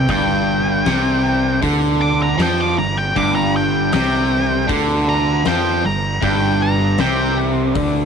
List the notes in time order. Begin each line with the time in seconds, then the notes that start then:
0.08 G1 G2 G3 B3 D4 G5, kick, open hi-hat
0.85 C2 C3, snare, open hi-hat
1.62 D2 D3, kick, open hi-hat
2.01 D6
2.23 A#5
2.38 F2 F3, snare, open hi-hat
2.42 G5
2.61 D6
2.77 G1 G2 A#5
2.97 G5
3.15 G1 G2 D3 G3 B3 D6, kick, open hi-hat
3.35 A#5
3.56 G5
3.92 C2 C3 G5, snare, open hi-hat
4.68 D2 D3, kick, open hi-hat
5.09 A#5
5.45 F2 F3 G5, snare, open hi-hat
5.84 G1 G2 A#5
6.22 G1 G2 G3 B3 D4 G5, kick, open hi-hat
6.62 A#5
6.98 C2 C3 G5, snare, open hi-hat
7.75 D2 D3, kick, open hi-hat